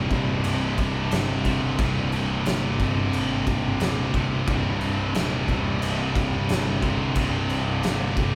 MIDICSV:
0, 0, Header, 1, 5, 480
1, 0, Start_track
1, 0, Tempo, 671141
1, 1281, Time_signature, 4, 2, 24, 8
1, 5972, End_track
2, 0, Start_track
2, 0, Title_t, "Distorted electric guitar"
2, 0, Program_c, 0, 30
2, 0, Note_on_c, 0, 36, 90
2, 0, Note_on_c, 0, 43, 104
2, 71, Note_on_c, 0, 48, 85
2, 72, Note_off_c, 0, 43, 0
2, 87, Note_on_c, 0, 43, 80
2, 96, Note_off_c, 0, 36, 0
2, 98, Note_on_c, 0, 36, 74
2, 789, Note_off_c, 0, 43, 0
2, 792, Note_off_c, 0, 36, 0
2, 795, Note_on_c, 0, 36, 71
2, 806, Note_on_c, 0, 43, 88
2, 815, Note_off_c, 0, 48, 0
2, 818, Note_on_c, 0, 48, 85
2, 1269, Note_off_c, 0, 43, 0
2, 1281, Note_off_c, 0, 36, 0
2, 1283, Note_on_c, 0, 36, 89
2, 1298, Note_on_c, 0, 43, 100
2, 1303, Note_off_c, 0, 48, 0
2, 1306, Note_on_c, 0, 48, 110
2, 1995, Note_off_c, 0, 43, 0
2, 1997, Note_off_c, 0, 48, 0
2, 2000, Note_on_c, 0, 48, 82
2, 2015, Note_on_c, 0, 43, 79
2, 2022, Note_off_c, 0, 36, 0
2, 2025, Note_on_c, 0, 36, 74
2, 2711, Note_off_c, 0, 36, 0
2, 2713, Note_off_c, 0, 43, 0
2, 2714, Note_on_c, 0, 36, 78
2, 2730, Note_on_c, 0, 43, 75
2, 2737, Note_off_c, 0, 48, 0
2, 2740, Note_on_c, 0, 48, 82
2, 3190, Note_off_c, 0, 43, 0
2, 3203, Note_off_c, 0, 36, 0
2, 3205, Note_on_c, 0, 36, 88
2, 3224, Note_on_c, 0, 43, 95
2, 3229, Note_off_c, 0, 48, 0
2, 3232, Note_on_c, 0, 48, 105
2, 3918, Note_off_c, 0, 43, 0
2, 3925, Note_off_c, 0, 48, 0
2, 3928, Note_on_c, 0, 48, 86
2, 3942, Note_on_c, 0, 43, 82
2, 3951, Note_off_c, 0, 36, 0
2, 3954, Note_on_c, 0, 36, 81
2, 4638, Note_off_c, 0, 43, 0
2, 4644, Note_off_c, 0, 36, 0
2, 4646, Note_on_c, 0, 36, 84
2, 4664, Note_on_c, 0, 43, 88
2, 4666, Note_off_c, 0, 48, 0
2, 4669, Note_on_c, 0, 48, 79
2, 5119, Note_off_c, 0, 36, 0
2, 5119, Note_off_c, 0, 43, 0
2, 5122, Note_on_c, 0, 36, 99
2, 5131, Note_on_c, 0, 43, 95
2, 5143, Note_off_c, 0, 48, 0
2, 5146, Note_on_c, 0, 48, 104
2, 5833, Note_off_c, 0, 43, 0
2, 5833, Note_off_c, 0, 48, 0
2, 5835, Note_on_c, 0, 48, 88
2, 5851, Note_on_c, 0, 43, 80
2, 5860, Note_off_c, 0, 36, 0
2, 5863, Note_on_c, 0, 36, 74
2, 5972, Note_off_c, 0, 36, 0
2, 5972, Note_off_c, 0, 43, 0
2, 5972, Note_off_c, 0, 48, 0
2, 5972, End_track
3, 0, Start_track
3, 0, Title_t, "Distorted electric guitar"
3, 0, Program_c, 1, 30
3, 0, Note_on_c, 1, 48, 95
3, 1043, Note_off_c, 1, 48, 0
3, 1046, Note_on_c, 1, 48, 84
3, 1056, Note_on_c, 1, 43, 83
3, 1063, Note_on_c, 1, 36, 64
3, 1274, Note_off_c, 1, 43, 0
3, 1284, Note_off_c, 1, 36, 0
3, 1302, Note_off_c, 1, 48, 0
3, 2968, Note_on_c, 1, 48, 86
3, 2974, Note_on_c, 1, 43, 72
3, 2984, Note_on_c, 1, 36, 76
3, 3193, Note_off_c, 1, 43, 0
3, 3197, Note_off_c, 1, 36, 0
3, 3220, Note_off_c, 1, 48, 0
3, 4880, Note_on_c, 1, 48, 88
3, 4888, Note_on_c, 1, 43, 76
3, 4897, Note_on_c, 1, 36, 73
3, 5110, Note_off_c, 1, 43, 0
3, 5111, Note_off_c, 1, 36, 0
3, 5132, Note_off_c, 1, 48, 0
3, 5972, End_track
4, 0, Start_track
4, 0, Title_t, "Fingered electric bass"
4, 0, Program_c, 2, 33
4, 0, Note_on_c, 2, 27, 89
4, 294, Note_off_c, 2, 27, 0
4, 315, Note_on_c, 2, 24, 96
4, 769, Note_off_c, 2, 24, 0
4, 796, Note_on_c, 2, 31, 98
4, 1250, Note_off_c, 2, 31, 0
4, 1278, Note_on_c, 2, 24, 93
4, 1730, Note_off_c, 2, 24, 0
4, 1765, Note_on_c, 2, 31, 96
4, 2214, Note_off_c, 2, 31, 0
4, 2247, Note_on_c, 2, 32, 85
4, 2695, Note_off_c, 2, 32, 0
4, 2725, Note_on_c, 2, 27, 89
4, 2943, Note_off_c, 2, 27, 0
4, 2958, Note_on_c, 2, 31, 85
4, 3179, Note_off_c, 2, 31, 0
4, 3203, Note_on_c, 2, 24, 102
4, 3653, Note_off_c, 2, 24, 0
4, 3687, Note_on_c, 2, 27, 97
4, 4136, Note_off_c, 2, 27, 0
4, 4168, Note_on_c, 2, 24, 91
4, 4616, Note_off_c, 2, 24, 0
4, 4648, Note_on_c, 2, 31, 101
4, 5097, Note_off_c, 2, 31, 0
4, 5122, Note_on_c, 2, 24, 99
4, 5574, Note_off_c, 2, 24, 0
4, 5604, Note_on_c, 2, 31, 98
4, 5972, Note_off_c, 2, 31, 0
4, 5972, End_track
5, 0, Start_track
5, 0, Title_t, "Drums"
5, 76, Note_on_c, 9, 36, 85
5, 76, Note_on_c, 9, 49, 63
5, 147, Note_off_c, 9, 49, 0
5, 148, Note_off_c, 9, 36, 0
5, 313, Note_on_c, 9, 49, 91
5, 385, Note_off_c, 9, 49, 0
5, 555, Note_on_c, 9, 49, 70
5, 558, Note_on_c, 9, 36, 94
5, 627, Note_off_c, 9, 49, 0
5, 629, Note_off_c, 9, 36, 0
5, 796, Note_on_c, 9, 49, 96
5, 808, Note_on_c, 9, 38, 124
5, 867, Note_off_c, 9, 49, 0
5, 879, Note_off_c, 9, 38, 0
5, 1035, Note_on_c, 9, 49, 76
5, 1038, Note_on_c, 9, 36, 86
5, 1106, Note_off_c, 9, 49, 0
5, 1109, Note_off_c, 9, 36, 0
5, 1277, Note_on_c, 9, 49, 82
5, 1278, Note_on_c, 9, 36, 126
5, 1348, Note_off_c, 9, 49, 0
5, 1350, Note_off_c, 9, 36, 0
5, 1517, Note_on_c, 9, 49, 69
5, 1589, Note_off_c, 9, 49, 0
5, 1756, Note_on_c, 9, 49, 84
5, 1768, Note_on_c, 9, 38, 112
5, 1827, Note_off_c, 9, 49, 0
5, 1839, Note_off_c, 9, 38, 0
5, 1999, Note_on_c, 9, 49, 61
5, 2000, Note_on_c, 9, 36, 85
5, 2070, Note_off_c, 9, 49, 0
5, 2072, Note_off_c, 9, 36, 0
5, 2239, Note_on_c, 9, 49, 77
5, 2311, Note_off_c, 9, 49, 0
5, 2478, Note_on_c, 9, 49, 61
5, 2481, Note_on_c, 9, 36, 98
5, 2550, Note_off_c, 9, 49, 0
5, 2553, Note_off_c, 9, 36, 0
5, 2718, Note_on_c, 9, 49, 88
5, 2730, Note_on_c, 9, 38, 118
5, 2789, Note_off_c, 9, 49, 0
5, 2802, Note_off_c, 9, 38, 0
5, 2961, Note_on_c, 9, 36, 91
5, 2961, Note_on_c, 9, 49, 58
5, 3032, Note_off_c, 9, 49, 0
5, 3033, Note_off_c, 9, 36, 0
5, 3200, Note_on_c, 9, 49, 78
5, 3202, Note_on_c, 9, 36, 121
5, 3271, Note_off_c, 9, 49, 0
5, 3273, Note_off_c, 9, 36, 0
5, 3438, Note_on_c, 9, 49, 62
5, 3510, Note_off_c, 9, 49, 0
5, 3680, Note_on_c, 9, 49, 85
5, 3692, Note_on_c, 9, 38, 106
5, 3752, Note_off_c, 9, 49, 0
5, 3764, Note_off_c, 9, 38, 0
5, 3922, Note_on_c, 9, 36, 78
5, 3923, Note_on_c, 9, 49, 59
5, 3993, Note_off_c, 9, 36, 0
5, 3995, Note_off_c, 9, 49, 0
5, 4162, Note_on_c, 9, 49, 83
5, 4233, Note_off_c, 9, 49, 0
5, 4402, Note_on_c, 9, 36, 102
5, 4405, Note_on_c, 9, 49, 71
5, 4474, Note_off_c, 9, 36, 0
5, 4476, Note_off_c, 9, 49, 0
5, 4641, Note_on_c, 9, 49, 92
5, 4653, Note_on_c, 9, 38, 120
5, 4712, Note_off_c, 9, 49, 0
5, 4725, Note_off_c, 9, 38, 0
5, 4880, Note_on_c, 9, 49, 63
5, 4881, Note_on_c, 9, 36, 95
5, 4952, Note_off_c, 9, 36, 0
5, 4952, Note_off_c, 9, 49, 0
5, 5116, Note_on_c, 9, 49, 88
5, 5120, Note_on_c, 9, 36, 112
5, 5187, Note_off_c, 9, 49, 0
5, 5192, Note_off_c, 9, 36, 0
5, 5360, Note_on_c, 9, 49, 67
5, 5432, Note_off_c, 9, 49, 0
5, 5601, Note_on_c, 9, 49, 87
5, 5614, Note_on_c, 9, 38, 111
5, 5673, Note_off_c, 9, 49, 0
5, 5685, Note_off_c, 9, 38, 0
5, 5840, Note_on_c, 9, 49, 61
5, 5843, Note_on_c, 9, 36, 92
5, 5912, Note_off_c, 9, 49, 0
5, 5914, Note_off_c, 9, 36, 0
5, 5972, End_track
0, 0, End_of_file